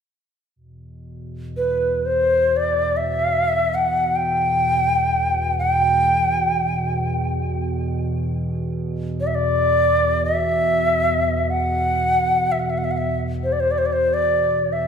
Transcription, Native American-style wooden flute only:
1.57 2.07 B4 medium
2.06 2.58 C5 medium
2.56 2.98 D5 medium
2.97 3.76 E5 medium
3.74 4.17 F#5 medium
4.16 5.58 G5 medium
5.59 7.29 G5 medium
9.20 9.28 D5 medium
9.27 9.36 E5 medium
9.35 10.24 D5 medium
10.25 11.52 E5 medium
11.50 12.53 F#5 medium
12.52 12.61 E5 medium
12.59 12.71 F#5 medium
12.70 12.79 E5 medium
12.78 12.86 F#5 medium
12.84 12.93 E5 medium
12.91 12.99 F#5 medium
12.97 13.18 E5 medium
13.44 13.54 C5 soft
13.52 13.61 D5 medium
13.60 13.72 C5 medium
13.71 13.80 D5 medium
13.78 13.87 C5 medium
13.86 13.94 D5 medium
13.93 14.15 C5 medium
14.14 14.74 D5 medium
14.73 14.87 E5 medium

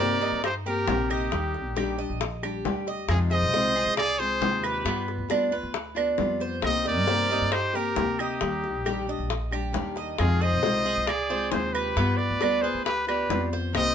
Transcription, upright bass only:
0.00 0.30 G2 medium
0.32 0.85 G2 medium
0.88 1.30 A#1 medium
1.32 1.64 D#2 loud
1.64 2.07 A#1 medium
2.10 2.62 A#1 medium
2.65 3.07 D2 medium
3.08 3.43 F2 loud
3.42 3.84 C2 medium
3.86 4.39 C2 medium
4.41 4.84 D#2 medium
4.85 5.20 G2 loud
5.18 5.61 D2 medium
5.63 6.16 D2 medium
6.19 6.61 F2 medium
6.63 6.97 C2 loud
6.97 7.39 G2 medium
7.41 7.94 G2 medium
7.96 8.39 D2 medium
8.41 8.75 D#2 loud
8.75 9.17 A#1 medium
9.19 9.72 A#1 medium
9.75 10.17 D#2 medium
10.19 10.54 F2 loud
10.53 10.95 C2 medium
10.97 11.50 C2 medium
11.53 11.95 D#2 medium
11.97 12.32 G2 loud
12.30 12.73 D2 medium
12.74 13.27 D2 medium
13.29 13.72 F2 medium
13.75 13.95 C2 loud

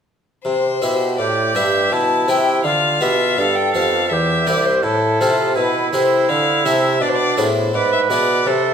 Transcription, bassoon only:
0.45 0.80 C3 soft
0.82 1.21 B2 soft
1.19 1.55 A2 medium
1.55 1.91 G2 soft
1.92 2.27 B2 soft
2.28 2.64 C3 soft
2.64 3.00 D3 soft
3.02 3.37 B2 soft
3.38 3.74 G2 medium
3.75 4.11 F2 soft
4.11 4.47 E2 soft
4.48 4.86 C2 soft
4.84 5.22 A2 medium
5.21 5.59 C3 soft
5.57 5.92 B2 medium
5.93 6.28 C3 soft
6.29 6.67 D3 soft
6.65 7.03 C3 medium
7.01 7.37 B2 medium
7.38 7.73 A2 soft
7.74 8.10 G#2 medium
8.10 8.48 B2 soft
8.46 8.74 C3 medium

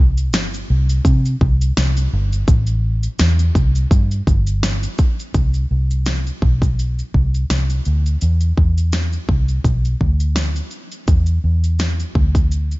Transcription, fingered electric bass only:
0.00 0.34 C2 medium
0.34 0.63 G1 medium
0.70 0.99 C2 medium
1.05 1.34 C3 medium
1.41 1.70 C2 medium
1.77 2.06 C2 medium
2.13 2.42 G1 medium
2.48 3.07 A1 loud
3.20 3.49 E2 medium
3.55 3.85 C2 medium
3.91 4.20 G2 loud
4.27 4.86 G1 medium
5.35 5.64 C2 medium
5.71 6.29 C2 medium
6.42 7.01 B1 medium
7.14 7.43 C2 medium
7.50 7.79 C2 medium
7.87 8.15 D2 medium
8.22 8.51 E2 loud
8.58 9.16 E2 medium
9.29 9.58 C2 medium
9.64 9.94 B1 medium
10.01 10.59 D2 medium
11.08 11.37 E2 medium
11.44 12.02 E2 medium
12.15 12.74 D2 medium

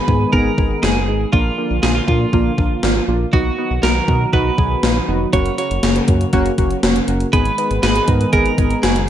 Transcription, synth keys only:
0.08 0.27 B3 medium
0.08 0.27 D#4 medium
0.08 0.27 G#4 medium
0.33 0.52 B3 loud
0.33 0.52 D#4 medium
0.33 0.52 G#4 loud
0.58 0.77 B3 medium
0.58 0.77 D#4 medium
0.58 0.77 G#4 medium
0.83 1.01 B3 medium
0.83 1.01 D#4 medium
0.83 1.01 G#4 medium
1.08 1.26 B3 medium
1.08 1.26 D#4 medium
1.08 1.27 G#4 medium
1.33 1.51 A#3 medium
1.33 1.51 D4 medium
1.33 1.51 F4 loud
1.58 1.77 A#3 medium
1.58 1.77 D4 medium
1.58 1.77 F4 medium
1.83 2.02 A#3 medium
1.83 2.02 D4 medium
1.83 2.02 F4 medium
2.08 2.27 A#3 medium
2.08 2.27 D4 medium
2.08 2.27 F4 medium
2.33 2.52 A#3 medium
2.33 2.52 D4 medium
2.33 2.52 F4 loud
2.58 2.77 A#3 medium
2.58 2.77 D4 medium
2.58 2.77 F4 medium
2.83 3.02 A#3 medium
2.83 3.02 D4 medium
2.83 3.02 F4 loud
3.08 3.27 A#3 medium
3.08 3.27 D4 medium
3.08 3.27 F4 medium
3.33 3.52 B3 medium
3.33 3.52 D#4 medium
3.33 3.52 F#4 loud
3.58 3.77 B3 medium
3.58 3.77 D#4 medium
3.58 3.77 F#4 medium
3.83 4.02 B3 medium
3.83 4.01 D#4 medium
3.83 4.01 F#4 medium
4.08 4.27 B3 medium
4.08 4.27 D#4 medium
4.08 4.27 F#4 medium
4.33 4.52 B3 loud
4.33 4.52 D#4 medium
4.33 4.52 F#4 loud
4.58 4.77 B3 medium
4.58 4.77 D#4 medium
4.58 4.77 G#4 medium
4.83 5.02 B3 medium
4.83 5.02 D#4 medium
4.83 5.02 F4 medium
5.08 5.27 B3 medium
5.08 5.27 D#4 medium
5.08 5.27 F#4 medium
5.33 5.52 A#3 loud
5.33 5.51 C#4 medium
5.33 5.51 F#4 loud
5.58 5.76 A#3 medium
5.58 5.77 C#4 medium
5.58 5.76 F#4 medium
5.83 6.02 A#3 medium
5.83 6.02 C#4 medium
5.83 6.02 G#4 medium
6.08 6.27 A#3 medium
6.08 6.27 C#4 medium
6.08 6.27 F#4 medium
6.33 6.51 A#3 loud
6.33 6.51 C#4 loud
6.33 6.51 F#4 loud
6.58 6.77 A#3 medium
6.58 6.77 C#4 medium
6.58 6.77 F#4 loud
6.83 7.02 A#3 medium
6.83 7.02 C#4 medium
6.83 7.02 F#4 loud
7.08 7.26 A#3 medium
7.08 7.26 C#4 medium
7.08 7.26 F#4 medium
7.33 7.51 B3 medium
7.33 7.51 D#4 medium
7.33 7.51 G#4 loud
7.58 7.77 B3 medium
7.58 7.76 D#4 medium
7.58 7.77 B4 medium
7.83 8.01 B3 medium
7.83 8.01 D#4 medium
7.83 8.01 G#4 medium
8.08 8.26 B3 medium
8.08 8.27 D#4 medium
8.08 8.26 A#4 medium
8.33 8.51 B3 loud
8.33 8.51 D#4 medium
8.33 8.51 G#4 loud
8.58 8.76 B3 medium
8.58 8.76 D#4 medium
8.58 8.76 G#4 medium
8.83 9.01 B3 medium
8.83 9.01 D#4 medium
8.83 9.01 F#4 medium

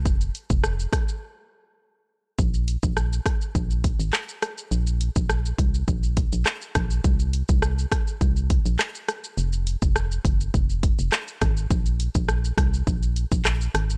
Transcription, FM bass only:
0.05 0.31 F1 loud
0.50 0.87 F1 medium
2.39 2.77 A#1 loud
2.83 3.20 A#1 loud
3.55 3.94 A#1 loud
4.00 4.11 G#1 medium
4.71 5.10 A#1 loud
5.16 5.53 A#1 medium
5.59 5.84 C2 loud
5.88 6.27 A#1 loud
6.33 6.45 A#1 medium
6.75 7.01 A#1 medium
7.04 7.43 C2 loud
7.49 7.86 C2 loud
8.21 8.60 C2 loud
8.66 8.77 A#1 medium
9.38 9.76 F1 loud
9.82 10.19 F1 medium
10.25 10.50 F#1 loud
10.54 10.93 F1 loud
10.99 11.11 F1 loud
11.42 11.67 G#1 loud
11.71 12.09 A#1 loud
12.15 12.52 A#1 loud
12.58 12.83 C2 medium
12.87 13.26 A#1 loud
13.32 13.69 A#1 medium
13.75 13.97 G#1 medium

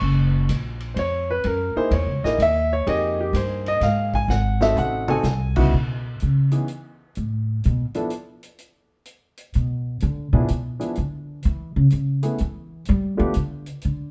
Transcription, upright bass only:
0.02 0.48 F#1 medium
0.49 0.95 A#1 medium
0.96 1.43 F2 medium
1.44 1.74 F#2 medium
1.76 muted upright bass stroke soft
1.91 2.08 E2 medium
2.07 2.23 C#2 medium
2.23 2.38 A#1 medium
2.38 2.85 D#2 medium
2.87 3.33 F2 medium
3.33 3.80 G2 medium
3.81 4.28 G#2 medium
4.28 4.75 G#1 medium
4.76 5.23 A1 medium
5.23 5.70 C2 medium
5.73 6.17 B2 medium
6.22 6.53 C#3 medium
7.17 7.61 A2 medium
7.65 7.84 B2 medium
9.55 9.99 B2 medium
10.02 10.32 D3 medium
10.33 10.48 B2 medium
10.50 10.80 B2 medium
10.98 11.41 D3 medium
11.45 11.76 E3 medium
11.76 11.91 C#3 medium
11.93 12.23 C#3 medium
12.41 12.84 E3 medium
12.89 13.19 G3 loud
13.19 13.34 E3 loud
13.36 13.66 D3 medium
13.85 14.11 D3 medium

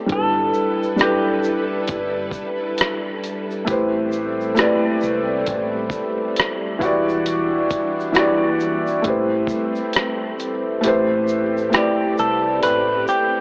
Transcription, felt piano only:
0.06 0.65 G3 medium
0.06 0.66 D4 medium
0.06 0.67 E4 medium
0.11 0.68 A4 medium
0.11 0.68 B4 medium
0.96 2.13 G3 medium
0.96 2.14 D4 medium
0.96 2.15 E4 medium
1.01 2.15 A4 medium
1.01 2.16 B4 medium
3.65 4.24 A3 medium
3.65 4.24 E4 medium
3.65 4.25 G4 medium
3.69 4.26 B4 medium
3.69 4.27 C5 medium
4.54 5.71 A3 medium
4.54 5.72 E4 medium
4.54 5.73 G4 medium
4.59 5.73 B4 medium
4.59 5.74 D5 loud
6.79 7.91 E3 medium
6.79 7.92 E4 medium
6.79 7.93 F#4 medium
6.83 7.93 G4 medium
6.83 7.94 D5 loud
8.12 9.03 E3 medium
8.12 9.03 E4 medium
8.12 9.05 F#4 medium
8.17 9.04 G4 medium
8.17 9.07 D5 loud
9.02 10.49 A3 medium
9.02 10.50 E4 medium
9.02 10.50 G4 medium
9.07 10.51 B4 medium
9.07 10.52 C5 medium
10.81 11.40 A3 medium
10.81 11.41 E4 medium
10.81 11.41 G4 medium
10.86 11.42 B4 medium
10.86 11.43 C5 loud
11.70 12.87 A3 medium
11.70 12.88 E4 medium
11.70 12.89 G4 medium
11.75 12.89 B4 medium
11.75 12.90 D5 medium

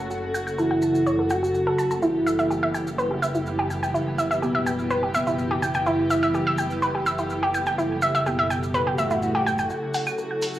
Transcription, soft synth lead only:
0.58 1.32 E4 medium
1.30 1.93 F#4 medium
2.02 2.89 E4 loud
4.42 5.05 B3 medium
5.14 5.77 B3 medium
5.86 6.73 E4 loud
8.26 9.00 B3 medium
8.98 9.61 A3 medium
9.70 10.57 C#4 loud

